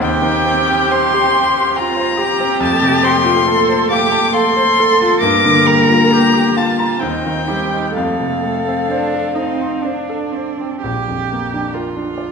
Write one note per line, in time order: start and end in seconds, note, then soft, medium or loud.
0.00 2.58 D#2 medium
0.00 2.59 C4 medium
0.00 1.81 G4 loud
0.00 0.93 G5 loud
0.22 0.60 D#3 medium
0.45 0.83 C4 medium
0.67 1.04 G4 medium
0.91 1.27 C5 medium
0.91 1.78 C6 loud
1.13 1.48 G4 medium
1.33 1.69 G5 medium
1.55 1.90 C6 medium
1.76 2.23 F4 medium
1.76 2.11 G5 medium
1.76 2.62 A#5 loud
1.97 2.32 C5 medium
2.17 2.53 G4 medium
2.22 3.48 G4 loud
2.40 2.62 C4 medium
2.60 5.18 F2 loud
2.60 5.19 A3 medium
2.60 3.05 A5 loud
2.82 3.17 C3 medium
3.03 3.38 C4 medium
3.03 3.90 C6 loud
3.24 3.60 F4 medium
3.46 3.81 A4 medium
3.46 3.93 A4 loud
3.69 4.03 C5 medium
3.90 4.33 G4 loud
3.90 4.25 F5 medium
3.90 4.34 D6 loud
4.11 4.47 A5 medium
4.32 5.23 A4 loud
4.32 4.69 F5 medium
4.32 5.20 C6 loud
4.57 4.92 C5 medium
4.80 5.15 A4 medium
5.02 5.23 F4 medium
5.20 6.96 G2 medium
5.20 6.96 A#3 loud
5.20 6.14 A#4 loud
5.20 5.68 D6 loud
5.45 5.80 D3 medium
5.65 6.01 G3 medium
5.65 6.59 A#5 loud
5.89 6.24 F4 medium
6.11 6.58 G4 medium
6.11 6.46 A#4 medium
6.34 6.69 G4 medium
6.57 7.04 F4 medium
6.57 6.92 F5 medium
6.57 7.01 A5 loud
6.79 7.01 A#5 medium
7.00 7.93 D#2 medium
7.00 7.90 C4 medium
7.00 7.49 D#4 medium
7.00 7.94 G5 loud
7.26 7.63 D#3 medium
7.48 7.86 G3 medium
7.48 7.95 G4 medium
7.73 7.96 D#4 medium
7.93 10.80 F2 medium
7.93 8.75 A3 medium
7.93 9.33 A4 medium
7.93 10.28 F5 medium
8.20 8.57 C3 medium
8.44 8.80 A3 soft
8.68 9.04 C4 medium
8.88 9.36 D4 medium
8.88 9.27 C5 medium
9.15 9.50 A4 medium
9.35 9.84 C4 medium
9.35 9.83 D#4 medium
9.35 9.73 C5 soft
9.61 9.98 C6 medium
9.81 10.33 D4 medium
9.81 10.82 D4 medium
9.81 10.23 C5 soft
10.10 10.49 A4 medium
10.32 10.82 C4 medium
10.32 10.74 C5 soft
10.60 10.84 C4 soft
10.82 12.32 A#1 medium
10.82 11.76 G4 medium
11.08 11.44 F2 soft
11.33 11.67 A#3 soft
11.54 11.88 D4 soft
11.73 12.32 F4 medium
11.73 12.14 A#4 medium
11.73 12.32 A#4 medium
11.73 12.10 A#4 soft
11.96 12.31 D4 soft
12.18 12.32 A4 soft
12.18 12.32 D5 soft